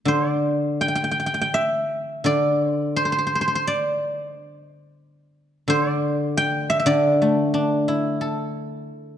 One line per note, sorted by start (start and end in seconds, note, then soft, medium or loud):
0.05 2.23 D3 medium
0.05 0.28 C5 medium
0.28 1.93 D5 medium
0.81 0.88 G5 medium
0.88 0.95 G5 medium
0.95 1.04 G5 medium
1.04 1.11 G5 medium
1.11 1.19 G5 medium
1.20 1.26 G5 soft
1.26 1.34 G5 medium
1.34 1.41 G5 medium
1.42 2.97 G5 medium
1.54 3.26 E5 medium
2.24 4.32 D3 medium
2.24 2.69 D5 medium
2.69 2.96 C5 medium
2.96 3.05 C5 medium
3.05 3.12 C5 medium
3.12 3.18 C5 medium
3.18 3.26 C5 soft
3.27 3.35 C5 soft
3.35 3.41 C5 medium
3.41 3.47 C5 medium
3.48 3.55 C5 medium
3.55 5.54 C5 medium
3.67 4.25 D5 medium
4.25 4.41 D#5 medium
4.41 4.58 D5 medium
4.58 4.74 D#5 medium
4.74 5.52 D5 medium
5.68 6.85 D3 medium
5.68 5.89 C5 loud
5.89 6.86 D5 loud
6.37 7.93 G5 loud
6.70 6.79 E5 medium
6.80 8.52 E5 medium
6.86 8.88 D3 medium
6.86 9.18 D5 medium
7.22 8.55 A3 soft
7.54 8.89 D4 medium
7.88 9.18 E4 medium
8.21 9.18 A4 soft